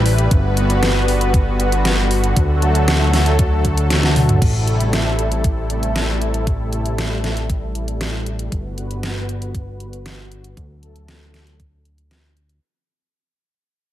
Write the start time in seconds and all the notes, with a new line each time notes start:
Already playing: A1 C3 G3 A3 E4 B4
0.06 open hi-hat
0.18 closed hi-hat
0.31 G1 D3 B3 F#4, kick, closed hi-hat
0.57 closed hi-hat
0.70 closed hi-hat
0.83 snare, closed hi-hat
1.08 open hi-hat
1.21 closed hi-hat
1.34 kick, closed hi-hat
1.60 closed hi-hat
1.72 closed hi-hat
1.85 snare, closed hi-hat
2.11 open hi-hat
2.24 closed hi-hat
2.36 D2 F#3 A3 A4, kick, closed hi-hat
2.62 closed hi-hat
2.75 closed hi-hat
2.88 snare, closed hi-hat
3.13 snare, open hi-hat
3.26 closed hi-hat
3.39 kick, closed hi-hat
3.65 kick, closed hi-hat
3.77 closed hi-hat
3.90 snare, closed hi-hat
4.03 snare
4.16 open hi-hat, mid tom
4.29 closed hi-hat, mid tom
4.42 A1 C3 G3 A3 E4 A4, kick, closed hi-hat, crash
4.68 closed hi-hat
4.80 closed hi-hat
4.93 snare, closed hi-hat
5.19 closed hi-hat
5.32 closed hi-hat
5.44 kick, closed hi-hat
5.70 closed hi-hat
5.83 closed hi-hat
5.96 snare, closed hi-hat
6.22 closed hi-hat
6.34 closed hi-hat
6.47 kick, closed hi-hat
6.73 closed hi-hat
6.86 closed hi-hat
6.98 snare, closed hi-hat
7.24 snare, closed hi-hat
7.37 closed hi-hat
7.50 kick, closed hi-hat
7.75 closed hi-hat
7.88 closed hi-hat
8.01 snare, closed hi-hat
8.26 closed hi-hat
8.39 closed hi-hat
8.52 G1 D3 B3 F#4 B4, kick, closed hi-hat
8.78 closed hi-hat
8.91 closed hi-hat
9.03 snare, closed hi-hat
9.29 closed hi-hat
9.42 closed hi-hat
9.55 kick, closed hi-hat
9.80 closed hi-hat
9.93 closed hi-hat
10.06 snare, closed hi-hat
10.32 closed hi-hat
10.44 closed hi-hat
10.57 D2 F#3 A3 A4, kick, closed hi-hat
10.83 closed hi-hat
10.96 closed hi-hat
11.08 snare, closed hi-hat
11.34 snare, closed hi-hat
11.47 closed hi-hat
11.60 kick, closed hi-hat
11.85 closed hi-hat
11.98 closed hi-hat
12.11 snare, closed hi-hat
12.37 closed hi-hat
12.49 closed hi-hat